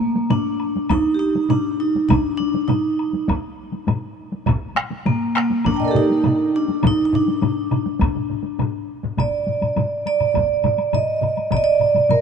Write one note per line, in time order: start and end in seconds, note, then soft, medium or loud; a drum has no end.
0.00 0.32 A#3 medium
0.00 taiko high soft
0.15 taiko high medium
0.30 0.92 D4 medium
0.30 taiko low-mid loud
0.30 taiko mid medium
0.30 taiko high medium
0.30 high woodblock soft
0.60 high woodblock soft
0.76 taiko high medium
0.89 1.12 D#4 loud
0.89 taiko loud
0.89 taiko high medium
0.89 high woodblock medium
1.14 1.20 G4 medium
1.19 1.50 D#4 medium
1.35 taiko high medium
1.49 1.81 D4 medium
1.49 taiko low-mid loud
1.49 taiko mid medium
1.49 taiko high medium
1.49 high woodblock soft
1.80 2.11 D#4 medium
1.95 taiko high medium
2.09 2.36 D4 medium
2.09 taiko loud
2.09 taiko low-mid loud
2.09 taiko mid loud
2.09 taiko high medium
2.09 high woodblock medium
2.37 2.69 D4 medium
2.37 taiko high soft
2.54 taiko high medium
2.68 3.24 D#4 medium
2.68 taiko low-mid loud
2.68 taiko mid loud
2.68 taiko high medium
2.68 high woodblock soft
2.99 high woodblock soft
3.13 taiko high medium
3.28 taiko loud
3.28 taiko high medium
3.28 high woodblock medium
3.72 taiko high medium
3.87 taiko low-mid loud
3.87 taiko mid loud
3.87 taiko high medium
3.87 high woodblock soft
4.32 taiko high soft
4.46 taiko loud
4.46 taiko low-mid loud
4.46 taiko mid loud
4.46 taiko high medium
4.46 high woodblock medium
4.75 taiko rim medium
4.75 taiko high soft
4.90 taiko high medium
5.06 5.36 A#3 medium
5.06 taiko low-mid loud
5.06 taiko mid loud
5.06 taiko high medium
5.06 high woodblock soft
5.35 5.64 A#3 medium
5.35 taiko rim medium
5.35 high woodblock soft
5.50 taiko high medium
5.64 5.94 D4 medium
5.64 taiko loud
5.64 taiko low-mid medium
5.64 taiko mid medium
5.64 taiko high medium
5.64 high woodblock soft
5.71 5.86 A5 soft
5.71 5.83 A#5 soft
5.76 5.92 D#5 medium
5.76 5.89 G5 medium
5.81 5.95 D5 medium
5.81 taiko low-mid medium
5.81 taiko mid medium
5.85 6.01 A4 medium
5.85 5.98 A#4 medium
5.91 6.04 G4 medium
5.91 taiko mid loud
5.95 6.57 D#4 loud
5.95 taiko low-mid loud
6.10 taiko high soft
6.24 taiko low-mid loud
6.24 taiko mid loud
6.24 taiko high medium
6.24 high woodblock soft
6.56 6.86 D4 loud
6.68 taiko high medium
6.83 taiko loud
6.83 taiko low-mid loud
6.83 taiko mid loud
6.83 taiko high medium
6.83 high woodblock medium
6.87 7.04 D#4 loud
7.05 7.13 D#4 medium
7.13 8.86 D4 medium
7.13 taiko low-mid medium
7.13 taiko mid loud
7.28 taiko high medium
7.42 taiko low-mid loud
7.42 taiko mid loud
7.42 taiko high medium
7.42 high woodblock soft
7.71 taiko low-mid medium
7.71 taiko mid medium
7.71 high woodblock soft
7.86 taiko high medium
8.00 taiko loud
8.00 taiko low-mid medium
8.00 taiko mid medium
8.00 taiko high medium
8.00 high woodblock medium
8.15 taiko low-mid medium
8.15 taiko mid medium
8.30 taiko low-mid medium
8.30 taiko mid medium
8.44 taiko high medium
8.59 taiko low-mid loud
8.59 taiko mid loud
8.59 taiko high medium
8.59 high woodblock soft
9.03 taiko low-mid medium
9.03 taiko mid medium
9.03 taiko high soft
9.17 10.06 D5 medium
9.17 taiko medium
9.17 taiko low-mid medium
9.17 taiko mid loud
9.17 taiko high medium
9.17 high woodblock soft
9.47 taiko low-mid medium
9.47 taiko mid medium
9.47 taiko high medium
9.61 taiko low-mid medium
9.61 taiko mid medium
9.61 taiko high soft
9.61 high woodblock soft
9.76 taiko low-mid loud
9.76 taiko mid medium
9.76 taiko high medium
9.76 high woodblock soft
10.06 10.97 D5 medium
10.06 taiko high soft
10.06 high woodblock soft
10.20 taiko low-mid medium
10.20 taiko mid medium
10.20 high woodblock soft
10.34 taiko medium
10.34 taiko low-mid medium
10.34 taiko mid medium
10.34 taiko high medium
10.34 high woodblock soft
10.64 taiko low-mid loud
10.64 taiko mid medium
10.64 taiko high medium
10.64 high woodblock soft
10.78 taiko high soft
10.78 high woodblock soft
10.93 11.54 D#5 medium
10.93 taiko low-mid medium
10.93 taiko mid medium
10.93 taiko high medium
10.93 high woodblock soft
11.22 taiko low-mid medium
11.22 taiko mid medium
11.22 taiko high medium
11.22 high woodblock soft
11.37 taiko high soft
11.37 high woodblock soft
11.51 11.58 D5 medium
11.51 taiko medium
11.51 taiko low-mid medium
11.51 taiko mid medium
11.51 taiko high medium
11.51 high woodblock soft
11.57 11.63 D#5 medium
11.64 12.11 D5 loud
11.80 taiko low-mid medium
11.80 taiko mid medium
11.80 high woodblock soft
11.95 taiko low-mid medium
11.95 taiko mid medium
11.95 taiko high medium
11.95 high woodblock soft
12.09 12.21 A#4 medium
12.09 taiko low-mid loud
12.09 taiko mid medium
12.09 taiko high medium
12.09 high woodblock soft